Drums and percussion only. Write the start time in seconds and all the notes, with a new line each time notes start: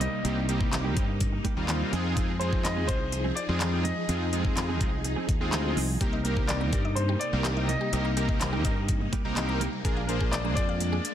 0.01 closed hi-hat
0.25 closed hi-hat
0.49 closed hi-hat
0.61 kick
0.73 snare, clap, closed hi-hat
0.97 kick, closed hi-hat
1.20 kick, closed hi-hat
1.45 kick, closed hi-hat
1.68 snare, clap, closed hi-hat
1.93 closed hi-hat
2.17 kick, closed hi-hat
2.41 closed hi-hat
2.53 kick
2.65 snare, clap, closed hi-hat
2.89 kick, closed hi-hat
3.12 closed hi-hat
3.37 closed hi-hat
3.60 snare, clap, closed hi-hat
3.85 closed hi-hat
4.09 closed hi-hat
4.33 closed hi-hat
4.45 kick
4.57 snare, clap, closed hi-hat
4.81 kick, closed hi-hat
5.04 closed hi-hat
5.29 kick, closed hi-hat
5.52 snare, clap, closed hi-hat
5.77 open hi-hat
6.01 kick, closed hi-hat
6.25 closed hi-hat
6.37 kick
6.49 snare, clap, closed hi-hat
6.73 kick, closed hi-hat
6.96 closed hi-hat
7.21 closed hi-hat
7.44 snare, clap, closed hi-hat
7.69 closed hi-hat
7.93 closed hi-hat
8.17 closed hi-hat
8.29 kick
8.41 snare, clap, closed hi-hat
8.65 kick, closed hi-hat
8.88 kick, closed hi-hat
9.13 kick, closed hi-hat
9.36 snare, clap, closed hi-hat
9.61 closed hi-hat
9.85 kick, closed hi-hat
10.09 closed hi-hat
10.21 kick
10.33 snare, clap, closed hi-hat
10.57 kick, closed hi-hat
10.80 closed hi-hat
11.05 closed hi-hat